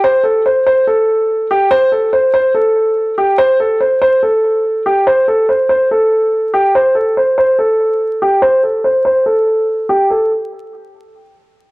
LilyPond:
\new Staff \with { instrumentName = "Grand piano" } { \time 4/4 \key a \minor \tempo 4 = 143 c''8 a'8 c''8 c''8 a'4. g'8 | c''8 a'8 c''8 c''8 a'4. g'8 | c''8 a'8 c''8 c''8 a'4. g'8 | c''8 a'8 c''8 c''8 a'4. g'8 |
c''8 a'8 c''8 c''8 a'4. g'8 | c''8 a'8 c''8 c''8 a'4. g'8 | a'8 r2. r8 | }